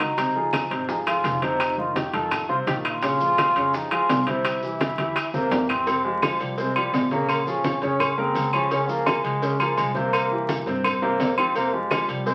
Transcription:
Already playing: upright bass C#2, grand piano D#3 D#4 F#4
0.00 trombone D#4, low bongo, high timbale, claves, maracas
0.17 grand piano C3 C4 C5, high bongo, high conga, high timbale, maracas
0.35 grand piano F3 F4 G#4, high conga
0.53 high bongo, high conga, high timbale, claves, maracas
0.70 upright bass G#1, grand piano C3 C4 C5, high conga, high timbale, maracas
0.88 grand piano F3 F4 G#4, trombone D#4, high bongo, high conga, maracas
1.06 grand piano F3 F4 G#4, trombone F4, high conga, high timbale, claves, maracas
1.24 upright bass F1, high bongo, low bongo, high conga, high timbale, maracas
1.42 grand piano C3 C4 C5, trombone D#4, high conga, high timbale, maracas
1.60 high bongo, high conga, high timbale, claves, maracas
1.77 grand piano D#3 D#4 F4, trombone F4, high bongo, high conga
1.96 trombone G4, high bongo, high conga, high timbale, maracas
2.13 upright bass F2, grand piano D#3 D#4 F4, trombone A4, high bongo, high conga, high timbale, maracas
2.31 high bongo, high conga, low conga, high timbale, claves, maracas
2.49 upright bass C2, grand piano C3 C4 C5, trombone F4, high conga
2.67 upright bass A#1, grand piano D#3 D#4 F4, trombone G4, high bongo, low bongo, high conga, high timbale, maracas
2.85 trombone F4, high bongo, high conga, high timbale, claves, maracas
3.02 grand piano C#3 C#4 C#5, high bongo, high conga, high timbale, maracas
3.20 grand piano F3 F4 G#4, high conga, maracas
3.38 high bongo, high conga, high timbale, claves, maracas
3.56 upright bass F2, grand piano C#3 C#4 C#5, high conga, high timbale, maracas
3.74 grand piano F3 F4 G#4, trombone D#4, high bongo, high conga, maracas
3.91 grand piano F3 F4 G#4, trombone F4, high conga, high timbale, claves
4.09 upright bass C2, high bongo, low bongo, high conga, high timbale, low timbale, maracas
4.27 grand piano C3 C4 C5, trombone E4, high conga, high timbale, maracas
4.45 high bongo, high conga, high timbale, claves, maracas
4.62 grand piano E3 E4 G4, high bongo, high conga, maracas
4.80 high bongo, high conga, high timbale, maracas
4.98 upright bass E2, grand piano E3 E4 G4, high bongo, high conga, high timbale, maracas
5.16 high bongo, high timbale, claves, maracas
5.33 upright bass E2, grand piano C3 C4 C5, trombone A#3, high conga, maracas
5.51 upright bass F2, grand piano E3 E4 G4, high bongo, low bongo, high timbale, low timbale, maracas
5.69 trombone C4, high bongo, low conga, high timbale, claves, maracas
5.87 grand piano C3 C4 C5, cowbell, high conga, low agogo, maracas
6.04 grand piano F3 F4 G4, trombone G#3, high conga
6.22 grand piano F3 F4 G4, cowbell, high conga, low agogo, claves, maracas
6.40 upright bass C2, trombone G3, cowbell, low agogo, maracas
6.58 grand piano C3 C4 C5, trombone G#3, cowbell, maracas
6.76 grand piano F3 F4 G4, trombone G3, cowbell, high conga, low agogo, claves
6.93 upright bass A#1, trombone G#3, cowbell, high conga, low timbale, low agogo, maracas
7.11 grand piano C#3 C#4 C#5, trombone A#3, cowbell, high conga, maracas
7.29 cowbell, high conga, low agogo, claves, maracas
7.47 grand piano F3 F4 G#4, trombone C#4, high conga, maracas
7.64 cowbell, high conga, low agogo, maracas
7.82 upright bass F2, grand piano C#3 C#4 C#5, trombone C#4, cowbell, high conga, maracas
8.00 cowbell, high conga, low conga, low agogo, claves, maracas
8.18 grand piano C#3 A#3 A#4, trombone C4, high conga
8.35 upright bass C#2, cowbell, high conga, low agogo, maracas
8.53 grand piano F3 F4 G#4, trombone C#4, high conga, low agogo, claves, maracas
8.71 grand piano C#3 C#4 C#5, cowbell, low agogo, maracas
8.88 grand piano F3 F4 G#4, trombone A#3, high conga, maracas
9.06 grand piano F3 F4 G#4, cowbell, high conga, low agogo, claves, maracas
9.23 upright bass C#2, trombone G#3, cowbell, high conga, low agogo, maracas
9.42 grand piano C#3 C#4 C#5, cowbell, high conga, maracas
9.59 grand piano F3 F4 G#4, trombone A#3, cowbell, high conga, low agogo, claves, maracas
9.77 upright bass C2, trombone G#3, cowbell, high conga, low agogo, maracas
9.94 grand piano C3 C4 C5, trombone A#3, cowbell, high conga, maracas
10.13 cowbell, low agogo, claves, maracas
10.31 grand piano E3 E4 G4, high conga
10.49 cowbell, high conga, low agogo, maracas
10.66 upright bass G2, grand piano C3 C4 C5, cowbell, high conga, maracas
10.84 cowbell, high conga, low conga, low agogo, claves, maracas
11.02 grand piano C3 C4 C5, trombone A#3, high bongo, high conga
11.19 upright bass F2, cowbell, high conga, low timbale, low agogo, maracas
11.37 grand piano F3 F4 G4, trombone C4, low bongo, high conga, low agogo, claves, maracas
11.55 grand piano C3 C4 C5, trombone A#3, cowbell, high conga, low agogo, maracas
11.73 grand piano F3 F4 G4, trombone G#3, high conga
11.91 grand piano F3 F4 G4, cowbell, high conga, low agogo, claves, maracas
12.08 upright bass C2, trombone G3, cowbell, high conga, low agogo, maracas
12.26 grand piano C3 C4 C5, trombone G#3, cowbell, high conga, maracas

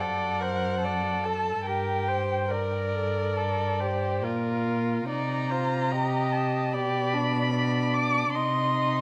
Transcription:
0.00 cello F#2, violin A4 F#5, viola D5
0.40 violin A#4, viola C5
0.82 violin A4, viola D5
1.24 viola A4, violin A5
1.65 cello G2, violin G4 G5, viola A#4
2.08 viola C5
2.51 violin A#4 D5, viola A#4
2.95 viola A4
3.37 violin A4, viola A#4
3.80 violin G4, viola C5
4.23 cello A#2, violin F4, viola A#4
5.07 cello C3, violin D#4 A#5, viola D5
5.50 violin F4, viola C5
5.91 violin G4, viola D#5
6.32 violin A5
6.73 cello B2, violin G4 B5, viola D5
7.13 violin D4
7.54 violin D4, viola D5
7.94 violin D6
8.34 cello C3, violin D#4 C6, viola D#5

